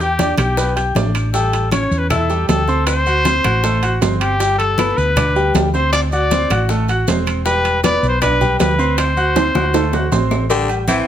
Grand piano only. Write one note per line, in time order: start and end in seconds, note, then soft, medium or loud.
0.00 0.16 G4 medium
0.00 0.16 G5 medium
0.00 0.16 G6 medium
0.19 0.35 D4 medium
0.19 0.35 D5 medium
0.19 0.35 D6 medium
0.38 0.54 G4 medium
0.38 0.54 G5 medium
0.38 0.54 G6 medium
0.57 0.73 B3 medium
0.57 0.73 B4 medium
0.57 0.73 B5 medium
0.76 0.92 G4 medium
0.76 0.92 G5 medium
0.76 0.92 G6 medium
0.96 1.27 D4 medium
0.96 1.27 D5 medium
0.96 1.28 D6 medium
1.34 1.65 G3 medium
1.34 1.66 G4 medium
1.34 1.66 G5 medium
1.72 2.04 C#4 medium
1.72 2.04 C#5 medium
1.72 2.04 C#6 medium
2.10 2.26 E4 medium
2.10 2.26 E5 medium
2.10 2.26 E6 medium
2.30 2.61 G3 medium
2.30 2.61 G4 medium
2.30 2.61 G5 medium
2.68 3.00 C4 medium
2.68 3.00 C5 medium
2.68 3.00 C6 medium
3.06 3.22 F#4 medium
3.06 3.22 F#5 medium
3.06 3.22 F#6 medium
3.25 3.41 C4 medium
3.25 3.41 C5 medium
3.25 3.41 C6 medium
3.44 3.60 F#4 medium
3.44 3.60 F#5 medium
3.44 3.60 F#6 medium
3.63 3.79 A3 medium
3.63 3.79 A4 medium
3.63 3.79 A5 medium
3.83 3.98 F#4 medium
3.83 3.98 F#5 medium
3.83 3.99 F#6 medium
4.01 4.33 C4 medium
4.01 4.33 C5 medium
4.01 4.33 C6 medium
4.40 4.71 G3 medium
4.40 4.71 G4 medium
4.40 4.72 G5 medium
4.78 5.10 B3 medium
4.78 5.10 B4 medium
4.78 5.10 B5 medium
5.17 5.32 D4 medium
5.17 5.33 D5 medium
5.17 5.33 D6 medium
5.36 5.67 G3 medium
5.36 5.67 G4 medium
5.36 5.67 G5 medium
5.74 6.05 C4 medium
5.74 6.06 C5 medium
5.74 6.06 C6 medium
6.13 6.28 F#4 medium
6.13 6.28 F#5 medium
6.13 6.28 F#6 medium
6.32 6.47 C4 medium
6.32 6.48 C5 medium
6.32 6.48 C6 medium
6.51 6.66 F#4 medium
6.51 6.66 F#5 medium
6.51 6.67 F#6 medium
6.70 6.85 A3 medium
6.70 6.85 A4 medium
6.70 6.85 A5 medium
6.89 7.04 F#4 medium
6.89 7.05 F#5 medium
6.89 7.05 F#6 medium
7.08 7.39 C4 medium
7.08 7.39 C5 medium
7.08 7.39 C6 medium
7.46 7.77 G3 medium
7.46 7.77 G4 medium
7.46 7.77 G5 medium
7.84 8.15 B3 medium
7.84 8.15 B4 medium
7.84 8.16 B5 medium
8.22 8.38 D4 medium
8.22 8.38 D5 medium
8.22 8.38 D6 medium
8.41 8.72 G3 medium
8.41 8.72 G4 medium
8.41 8.72 G5 medium
8.78 9.10 C4 medium
8.78 9.10 C5 medium
8.78 9.10 C6 medium
9.17 9.32 F#4 medium
9.17 9.33 F#5 medium
9.17 9.33 F#6 medium
9.36 9.52 C4 medium
9.36 9.52 C5 medium
9.36 9.52 C6 medium
9.55 9.71 F#4 medium
9.55 9.71 F#5 medium
9.55 9.71 F#6 medium
9.74 9.90 A3 medium
9.74 9.90 A4 medium
9.74 9.90 A5 medium
9.93 10.09 F#4 medium
9.93 10.09 F#5 medium
9.93 10.09 F#6 medium
10.12 10.43 C4 medium
10.12 10.43 C5 medium
10.12 10.43 C6 medium
10.50 10.81 G3 medium
10.50 10.81 G4 medium
10.50 10.82 G5 medium
10.88 11.07 C4 medium
10.88 11.07 C5 medium
10.88 11.07 E5 medium